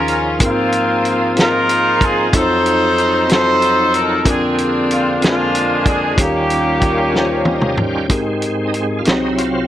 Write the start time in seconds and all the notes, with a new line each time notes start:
Already playing: D#2 D#3 F3 C#4 D#4 F4 G#4 A#4
0.08 closed hi-hat
0.39 G#2 F3 A#3 C4 D#4 F4 G#4 A#4, kick, closed hi-hat
0.44 A#3 C4 F4
0.72 closed hi-hat
1.05 F4, closed hi-hat
1.35 C4 D#4 F4 G#4 A#4, closed hi-hat
1.39 D#4 F4 A#4, snare
1.69 closed hi-hat
2.01 G#4, kick, closed hi-hat
2.32 F2 F3 F#3 C4 D#4 F4 F#4 A4 C5 F#5, kick, closed hi-hat
2.66 closed hi-hat
2.98 closed hi-hat
3.28 C4 D#4 F4 F#4 A4 C5, snare, closed hi-hat
3.62 closed hi-hat
3.94 A#4, closed hi-hat
4.24 F2 D3 A#3 C4 D4 F4 G4 G#4 A#4, kick, closed hi-hat
4.28 D4
4.33 G#4
4.58 closed hi-hat
4.91 F4, closed hi-hat
5.21 G#3 C4 D4 F4 G#4 A#4, snare, closed hi-hat
5.55 closed hi-hat
5.86 G#4, kick, closed hi-hat
6.16 D#2 D#3 G3 C#4 D#4 F4 G4 A4, kick, closed hi-hat
6.20 A#3
6.25 A#4
6.50 closed hi-hat
6.82 kick, closed hi-hat
7.12 C#4 D#4 F4 G4 C5, snare
7.21 C#5
7.45 D#5, high tom
7.61 mid tom
7.77 G5, mid tom
8.09 G#2 G#3 C4 D#4 G4 G#4 A#4, kick, closed hi-hat
8.42 closed hi-hat
8.67 D#4
8.74 C4, closed hi-hat
8.99 F4
9.05 C2 C3 F#3 C4 D#4 F#4 G#4 C5, snare, closed hi-hat
9.32 E4
9.38 F4, closed hi-hat